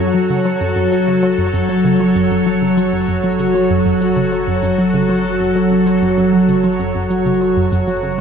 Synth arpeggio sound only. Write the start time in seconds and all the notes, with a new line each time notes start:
0.14 F#3
0.30 C#3
0.45 F#3
0.61 F#2
0.76 F#2
0.92 F#3
1.07 C#3
1.23 F#3
1.38 F#2
1.54 F#2
1.69 F#3
1.85 C#3
2.00 F#3
2.15 F#2
2.31 F#2
2.46 F#3
2.62 C#3
2.77 F#3
2.93 F#2
3.08 F#2
3.24 F#3
3.39 C#3
3.55 F#3
3.70 F#2
3.86 F#2
4.01 F#3
4.17 C#3
4.32 F#3
4.47 F#2
4.63 F#2
4.78 F#3
4.94 C#3
5.09 F#3
5.25 F#2
5.40 F#2
5.56 F#3
5.71 C#3
5.86 F#3
6.02 F#2
6.17 F#2
6.33 F#3
6.48 C#3
6.64 F#3
6.79 F#2
6.95 F#2
7.10 F#3
7.26 C#3
7.41 F#3
7.57 F#2
7.72 F#2
7.88 F#3
8.03 C#3